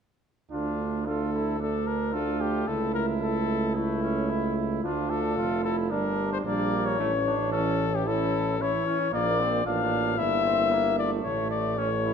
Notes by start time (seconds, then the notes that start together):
0.51 D2 A3 D4 F4
1.06 A3 D4 F4 A4
1.33 E4
1.59 A3 D4 A4
1.87 A#4
2.13 A3 D4 F4 A4
2.41 G4
2.67 C#2 A3 E4 A4
2.94 A#4
3.21 A3 E4 A4
3.76 A3 E4
4.02 C#4
4.30 E4
4.83 D2 A3 D4 F4
5.10 A4
5.37 F1 F4
5.64 E4 A4
5.90 G1 G3 D4 A#4
6.33 C5
6.44 A#1 G3 A#3 D4 D5
6.86 C#5
6.98 A1 E3 A3 C#4
7.27 D4
7.52 E3 C#4 A4
7.95 G4
8.06 E3 C#4 E4 A4
8.59 E3 C#4 E4 C#5
8.86 C#4 E4
9.11 A#1 A#3 F4 D5
9.39 C4
9.65 A1 A#3 D4 F4 F5
10.17 G1 A#3 E4 E5
10.45 C4
10.72 A#3
10.99 A3 D5
11.24 A1 A3 E4 C#5
11.51 D5
11.77 A3 C#4 E4 C#5
12.04 E4